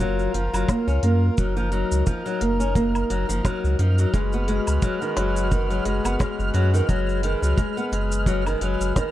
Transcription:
Already playing: F#1 F4 A#4 F6
0.00 F#3, shaker
0.19 shaker
0.34 F#1 F3, open hi-hat
0.53 F#1 F#3, low woodblock, shaker
0.68 A#3, kick, snare, shaker
0.87 C#2 C#4, shaker
1.03 F#2 A#3, open hi-hat
1.37 F#1 F#3 D#4, kick, shaker
1.57 F3, shaker
1.72 F#3, open hi-hat
1.91 C#2, shaker
2.06 F3, kick, shaker
2.26 F#3, shaker
2.41 F#1 A#3, open hi-hat
2.60 C#4, shaker
2.75 A#3, kick, shaker
2.95 low woodblock, shaker
3.10 F#1 F#3, open hi-hat
3.29 F#1 F3, shaker
3.45 F#3, kick, snare, shaker
3.64 C#2, shaker
3.79 F#2 F3, open hi-hat
3.98 F#3, shaker
4.13 F#1 G#3 F#4 B4, kick, shaker
4.33 B3, shaker
4.48 G#3, open hi-hat
4.67 C#2, low woodblock, shaker
4.82 F#3, kick, shaker
5.02 D#3, shaker
5.17 F#1 F#3, snare, open hi-hat
5.36 shaker
5.51 D#3, kick, shaker
5.70 F#3, shaker
5.85 F#1 G#3, open hi-hat
6.05 F#1 B3, low woodblock, shaker
6.19 G#3, kick, snare, shaker
6.39 F#1, shaker
6.54 F#2 F#3, open hi-hat
6.74 D#3, shaker
6.89 F#1 F#3 G#4, kick, shaker
7.09 shaker
7.23 D#3, open hi-hat
7.42 C#2 F#3, shaker
7.58 G#3, kick, shaker
7.77 B3, shaker
7.92 F#1 G#3, open hi-hat
8.12 shaker
8.26 F#3, kick, shaker
8.46 D#3, low woodblock, shaker
8.61 F#1 F#3, open hi-hat
8.80 F#1, shaker
8.96 D#3, kick, snare, shaker

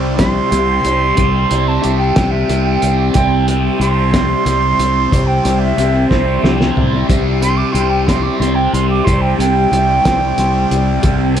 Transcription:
Already playing: C2 C3 G3 C4 E4 G4 A5
0.17 C3 G3 C4 C6, kick, snare, closed hi-hat
0.50 C2 C3 G3 C4, closed hi-hat
0.85 C2, closed hi-hat
1.16 C2 C3 G3 C4, kick, closed hi-hat
1.49 C2 G3 C4, closed hi-hat
1.68 A5
1.82 C2 C3 G3 C4, closed hi-hat
1.98 G5
2.15 C2 C3 G3 C4, kick, snare, closed hi-hat
2.31 E5
2.49 C2 C3 G3 C4, closed hi-hat
2.64 G5
2.82 C2, closed hi-hat
3.12 C2 C3 G5, kick, closed hi-hat
3.16 G3 C4
3.48 G3 C4, closed hi-hat
3.80 C2 C3 G3 C4 C6, closed hi-hat
4.13 C3 G3 C4, kick, snare, closed hi-hat
4.46 C2 C3 G3 C4, closed hi-hat
4.79 C2, closed hi-hat
5.11 C2 C3 G3 C4, kick, closed hi-hat
5.27 G5
5.45 C2 G3 C4, closed hi-hat
5.59 E5
5.78 C2 C3 G3 C4, closed hi-hat
6.08 C2 G3 C4 C5, kick, snare
6.13 C3
6.43 C2 C3 G3 C4, snare
6.61 snare
6.76 C2, floor tom
7.08 C2 C3 G3 C4, kick, closed hi-hat
7.42 G3 C4 C6, closed hi-hat
7.57 D6
7.72 C2 C3 G3 C6, closed hi-hat
7.76 C4
7.90 G5
8.06 C3 G3 C4 C6, kick, snare, closed hi-hat
8.22 D6
8.39 C2 C3 G3 C4 C6, closed hi-hat
8.55 G5
8.73 C2 C6, closed hi-hat
8.90 D6
9.04 C2 C3 G3 C4 C6, kick, closed hi-hat
9.21 G5
9.39 C2 G3 C4 G5, closed hi-hat
9.71 C2 C3 G3 C4, closed hi-hat
10.05 C2 C3 G3 C4, kick, snare, closed hi-hat
10.38 C2 C3 G3 C4, closed hi-hat
10.71 C2, closed hi-hat
11.03 C2 C3 G3 C4, kick, closed hi-hat
11.35 C4, closed hi-hat

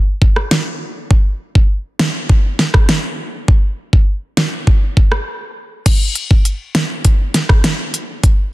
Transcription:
0.22 kick
0.36 cross-stick
0.51 snare
1.11 kick
1.55 kick
1.99 snare
2.29 kick
2.59 snare
2.74 kick, cross-stick
2.89 snare
3.48 kick
3.93 kick
4.37 snare
4.67 kick
4.97 kick
5.12 cross-stick
5.86 kick, closed hi-hat, crash
6.15 closed hi-hat
6.31 kick
6.45 closed hi-hat
6.75 snare, closed hi-hat
7.05 kick, closed hi-hat
7.34 snare, closed hi-hat
7.49 kick, cross-stick
7.64 snare, closed hi-hat
7.94 closed hi-hat
8.24 kick, closed hi-hat

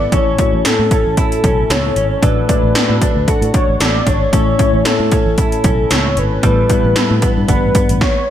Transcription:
Already playing: A2 G3 B3 E4 A4 B4 D5
0.12 A1 A2 A3 C#4 E4 A4 C#5, kick, closed hi-hat
0.38 A3 C#4 E4 F#4, kick, closed hi-hat
0.53 A1
0.65 A4, snare, closed hi-hat
0.79 A2
0.91 C#4 A4, kick, closed hi-hat
1.06 A1
1.17 E4 A4, kick, closed hi-hat
1.32 closed hi-hat
1.44 B1 C#4, kick, closed hi-hat
1.70 C#2 A4 C#5, snare, closed hi-hat
1.96 G#1 C#4, closed hi-hat
2.17 C#5
2.22 A1 A2 F#3 A3 D4 F#4 A4 B4 D5, kick, closed hi-hat
2.48 A3 D4 F#4 D5, kick, closed hi-hat
2.63 A1
2.75 A4, snare, closed hi-hat
2.89 A2
3.02 D4, kick, closed hi-hat
3.16 D2
3.28 F#4 A4, muted fingered electric bass stroke, kick, closed hi-hat
3.42 A2, closed hi-hat
3.54 D4 C#5, kick, closed hi-hat
3.68 A1
3.80 A1 A4 D5, snare, closed hi-hat
4.07 G#1 D4 C#5, kick, closed hi-hat
4.32 A1 A2 A3 C#4 E4 A4 C#5, kick, closed hi-hat
4.58 A3 C#4 E4 C#5, kick, closed hi-hat
4.73 A1
4.85 A4, snare, closed hi-hat
5.00 A2
5.11 C#4, kick, closed hi-hat
5.26 A1
5.38 E4 A4, kick, closed hi-hat
5.52 closed hi-hat
5.64 B1 C#4, kick, closed hi-hat
5.91 C#2 A4 C#5, snare, closed hi-hat
6.17 G#1 C#4 B4, closed hi-hat
6.43 A1 A2 G3 B3 E4 A4 B4, kick, closed hi-hat
6.69 G3 B3 E4 B4, kick, closed hi-hat
6.84 A1
6.96 A4, snare, closed hi-hat
7.11 A2
7.22 B3, kick, closed hi-hat
7.37 G2
7.48 G1 G2 G3 B3 D4 B4, kick, closed hi-hat
7.63 A1
7.75 B3, kick, closed hi-hat
7.89 A1, closed hi-hat
8.01 C#5, kick, snare

